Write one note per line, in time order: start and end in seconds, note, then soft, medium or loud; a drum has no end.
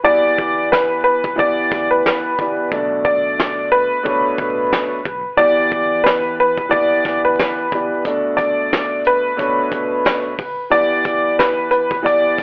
0.03 1.20 E2 loud
0.03 1.28 E3 medium
0.03 1.29 B3 medium
0.03 1.29 G4 medium
0.03 0.67 D5 medium
0.03 1.29 D5 loud
0.38 kick medium
0.72 1.02 B4 medium
0.72 cross-stick medium
0.72 snare loud
1.04 1.34 B4 medium
1.24 kick medium
1.36 2.30 E3 loud
1.36 2.30 B3 medium
1.36 2.31 G4 medium
1.36 2.31 D5 loud
1.36 1.88 D5 medium
1.36 kick medium
1.72 2.01 D2 medium
1.72 kick medium
1.72 snare soft
1.91 2.68 B4 medium
2.06 cross-stick medium
2.06 snare loud
2.39 2.55 E2 medium
2.39 2.70 E3 medium
2.39 2.70 B3 medium
2.39 2.70 G4 medium
2.39 2.71 D5 medium
2.39 kick medium
2.71 3.87 B1 loud
2.71 3.96 B2 medium
2.71 3.96 A3 medium
2.71 3.96 D4 medium
2.71 3.97 D5 loud
2.71 kick loud
3.05 3.68 D5 medium
3.05 kick medium
3.40 cross-stick medium
3.40 snare loud
3.72 5.34 B4 medium
4.03 4.97 B2 loud
4.03 4.97 A3 medium
4.03 4.98 D4 medium
4.03 4.98 C#5 loud
4.03 kick medium
4.38 4.67 A1 medium
4.38 kick medium
4.73 cross-stick medium
4.73 snare loud
5.05 5.22 B1 medium
5.05 kick medium
5.37 6.54 E2 loud
5.37 6.62 E3 medium
5.37 6.62 B3 medium
5.37 6.62 G4 medium
5.37 6.01 D5 loud
5.37 6.63 D5 loud
5.72 kick medium
6.04 6.34 B4 medium
6.04 cross-stick medium
6.04 snare loud
6.40 6.69 B4 medium
6.58 kick medium
6.69 7.63 E3 loud
6.69 7.64 B3 medium
6.69 7.64 G4 medium
6.69 7.20 D5 medium
6.69 7.64 D5 loud
6.69 kick medium
7.05 7.34 D2 medium
7.05 kick medium
7.05 snare soft
7.25 8.01 B4 medium
7.39 cross-stick medium
7.39 snare loud
7.72 7.88 E2 medium
7.72 8.03 E3 medium
7.72 8.03 B3 medium
7.72 8.04 G4 medium
7.72 8.04 D5 medium
7.72 kick medium
8.05 9.29 B2 medium
8.05 9.29 A3 medium
8.05 9.30 D4 medium
8.05 9.30 D5 medium
8.05 kick loud
8.05 closed hi-hat medium
8.37 9.00 D5 medium
8.37 kick medium
8.37 closed hi-hat medium
8.73 cross-stick medium
8.73 snare loud
8.73 closed hi-hat loud
9.04 10.69 B4 medium
9.04 closed hi-hat medium
9.37 10.31 B2 loud
9.37 10.31 A3 medium
9.37 10.31 D4 medium
9.37 10.32 C#5 loud
9.37 kick medium
9.37 closed hi-hat medium
9.72 kick medium
9.72 closed hi-hat medium
10.05 cross-stick medium
10.05 snare loud
10.05 closed hi-hat medium
10.39 kick medium
10.39 open hi-hat soft
10.70 11.95 E3 medium
10.70 11.95 B3 medium
10.70 11.96 G4 medium
10.70 11.34 D5 loud
10.70 11.96 D5 loud
10.70 closed hi-hat medium
11.05 kick medium
11.05 closed hi-hat medium
11.39 11.69 B4 medium
11.39 cross-stick medium
11.39 snare loud
11.39 closed hi-hat loud
11.71 12.01 B4 medium
11.71 closed hi-hat medium
11.91 kick medium
12.02 12.43 E3 loud
12.02 12.43 B3 medium
12.02 12.43 G4 medium
12.02 12.43 D5 loud
12.02 12.43 D5 medium
12.02 kick medium
12.07 closed hi-hat medium
12.38 kick medium
12.38 snare soft
12.38 closed hi-hat medium